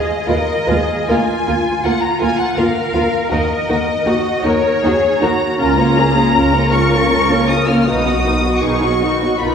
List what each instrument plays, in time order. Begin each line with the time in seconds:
Already playing: cello section G#4, violin section D#5
0.26 double bass section D#2, viola section G#3 F4, violin section F4 B4, cello section A#4
0.67 double bass section D#2, viola section G#3 F4, violin section F4 B4, cello section G#4
1.08 double bass section D2, viola section A#3 F4, violin section F4 A#4 G#5, cello section F4
1.47 double bass section D2, viola section A#3 F4, violin section F4 A#4
1.83 double bass section D2, viola section A#3 F4, violin section F4 A#4 F#5
2.01 violin section A#5
2.20 double bass section D2, viola section A#3 F4, violin section F4 A#4 G#5
2.39 violin section F#5
2.57 double bass section D2, viola section A#3 F4, violin section F4 A#4 F5, cello section A#4
2.94 double bass section D2, viola section A#3 F4, violin section F4 A#4
3.31 double bass section D#2, viola section A#3 D#4, violin section F#4 A#4 D#5
3.69 double bass section D#2, viola section A#3 D#4, violin section F#4 A#4
4.04 double bass section D#2, viola section A#3 D#4, cello section F#4, violin section F#4 A#4
4.43 double bass section D#2, viola section A#3 D#4, violin section F#4 A#4 C#5, cello section A#4
4.82 double bass section D#2, viola section A#3 D#4, violin section F#4 A#4, cello section G#4
5.21 double bass section D#2, viola section A#3 D#4, violin section F#4 A#4 A#5, cello section F#4
5.58 double bass section C#2, viola section C#4 F4, violin section C#4 A#4 A#5, cello section F4
5.78 viola section A#3 C#4, violin section F4 C#5
5.97 viola section C#4 F4, violin section C#4 A#4, cello section G#4
6.15 viola section A#3 C#4, violin section F4 C#5
6.34 double bass section C#2, violin section C#4 A#4, viola section C#4 F4, cello section A#4
6.53 viola section A#3 C#4, violin section F4 C#5
6.72 viola section C#4 F4, violin section C#4 A#4 C#6
6.92 viola section A#3 C#4, violin section F4 C#5
7.11 double bass section C#2, violin section C#4 A#4, viola section C#4 F4
7.29 viola section A#3 C#4, violin section F4 C#5
7.49 violin section C#4 A#4 D#6, viola section C#4 F4
7.68 viola section A#3 C#4, violin section F4 C#5 F6
7.80 violin section F6
7.86 double bass section B1, viola section D#3 D#4, violin section D#4 B4 D#6, cello section F#4
8.06 viola section F#3 B3, violin section F#4 D#5
8.26 viola section D#3 D#4, violin section D#4 B4
8.45 viola section F#3 B3, violin section F#4 D#5
8.62 double bass section B1, viola section D#3 D#4, violin section D#4 B4 C#6, cello section G#4
8.83 viola section F#3 B3, violin section F#4 D#5
9.02 viola section D#3 D#4, violin section D#4 B4, cello section F#4
9.22 viola section F#3 B3, violin section F#4 D#5
9.39 double bass section B1, viola section D#3 D#4, violin section D#4 B4 B5, cello section F4